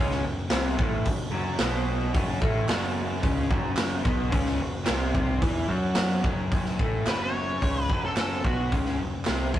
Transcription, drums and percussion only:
0.11 snare
0.50 snare, clap, open hi-hat
0.79 kick
1.05 kick, open hi-hat
1.59 snare, clap, open hi-hat
2.14 kick, open hi-hat
2.42 kick
2.69 snare, clap, open hi-hat
3.23 kick, open hi-hat
3.51 kick
3.77 snare, clap, open hi-hat
4.05 kick
4.32 kick, open hi-hat
4.46 snare
4.86 snare, clap, open hi-hat
5.15 kick
5.42 kick, open hi-hat
5.95 snare, clap, open hi-hat
6.24 kick
6.52 kick, open hi-hat
6.65 snare
6.79 kick
7.07 snare, clap, open hi-hat
7.62 kick, open hi-hat
7.90 kick
8.17 snare, clap, open hi-hat
8.45 kick
8.72 kick, open hi-hat
8.86 snare
9.25 snare, clap, open hi-hat
9.54 kick

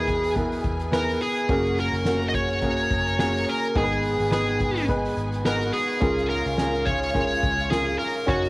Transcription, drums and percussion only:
0.07 kick, hi-hat pedal, open hi-hat
0.23 hi-hat pedal, open hi-hat
0.35 kick, hi-hat pedal, open hi-hat
0.52 hi-hat pedal, open hi-hat
0.64 kick, hi-hat pedal, open hi-hat
0.80 hi-hat pedal, open hi-hat
0.92 snare, hi-hat pedal, open hi-hat
1.08 snare, hi-hat pedal, open hi-hat
1.21 hi-hat pedal, open hi-hat
1.36 hi-hat pedal, open hi-hat
1.49 kick, hi-hat pedal, open hi-hat
1.65 hi-hat pedal, open hi-hat
1.77 hi-hat pedal, open hi-hat
1.93 hi-hat pedal, open hi-hat
2.05 snare, hi-hat pedal, open hi-hat
2.21 hi-hat pedal
2.33 kick, hi-hat pedal, open hi-hat
2.50 open hi-hat
2.62 kick, hi-hat pedal, open hi-hat
2.78 hi-hat pedal, open hi-hat
2.91 kick, hi-hat pedal, open hi-hat
3.06 hi-hat pedal, open hi-hat
3.19 snare, hi-hat pedal, open hi-hat
3.35 snare, hi-hat pedal, open hi-hat
3.47 hi-hat pedal, open hi-hat
3.63 hi-hat pedal, open hi-hat
3.75 kick, hi-hat pedal, open hi-hat
3.92 hi-hat pedal, open hi-hat
4.04 hi-hat pedal, open hi-hat
4.20 hi-hat pedal, open hi-hat
4.31 snare, hi-hat pedal, open hi-hat
4.47 hi-hat pedal, open hi-hat
4.60 kick, hi-hat pedal, open hi-hat
4.76 hi-hat pedal, open hi-hat
4.88 kick, hi-hat pedal, open hi-hat
5.05 hi-hat pedal, open hi-hat
5.17 hi-hat pedal, open hi-hat
5.32 hi-hat pedal, open hi-hat
5.45 snare, hi-hat pedal, open hi-hat
5.61 snare, hi-hat pedal
5.73 hi-hat pedal, open hi-hat
5.88 open hi-hat
6.01 kick, hi-hat pedal, open hi-hat
6.18 hi-hat pedal, open hi-hat
6.30 hi-hat pedal, open hi-hat
6.46 hi-hat pedal, open hi-hat
6.58 snare, hi-hat pedal, open hi-hat
6.74 hi-hat pedal, open hi-hat
6.86 kick, hi-hat pedal, open hi-hat
7.03 hi-hat pedal, open hi-hat
7.15 kick, hi-hat pedal, open hi-hat
7.31 hi-hat pedal, open hi-hat
7.43 kick, hi-hat pedal, open hi-hat
7.59 hi-hat pedal, open hi-hat
7.72 snare, hi-hat pedal, open hi-hat
7.88 snare, hi-hat pedal
8.00 hi-hat pedal, open hi-hat
8.15 open hi-hat
8.28 kick, hi-hat pedal, open hi-hat
8.44 hi-hat pedal, open hi-hat

